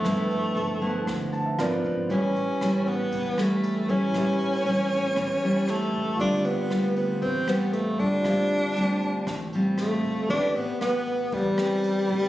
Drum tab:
HH |xxxxxxxx|xxxxxxxx|xxxxxxxx|xxxxxxxx|
SD |r---r-r-|--r--r--|r---r-r-|--r--r--|
BD |o--oo--o|o--oo--o|o--oo--o|o--oo--o|

HH |xxxxxxxx|xxxxxxxx|
SD |r---r-r-|--r--r--|
BD |o--oo--o|o--oo--o|